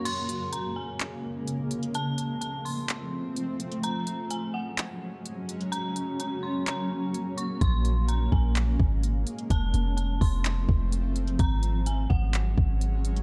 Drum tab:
CC |x---------------|----------------|----------------|----------------|
HH |x-x-x---x---x-xx|x-x-x-o-x---x-xx|x-x-x---x---x-xx|x-x-x---x---x-x-|
CP |--------x-------|--------x-------|--------x-------|--------x-------|
BD |----------------|----------------|----------------|----------------|

CC |----------------|----------------|----------------|
HH |x-x-x---x---x-xx|x-x-x-o-x---x-xx|x-x-x---x---x-xx|
CP |--------x-------|--------x-------|--------x-------|
BD |o-----o---o-----|o-----o---o-----|o-----o---o-----|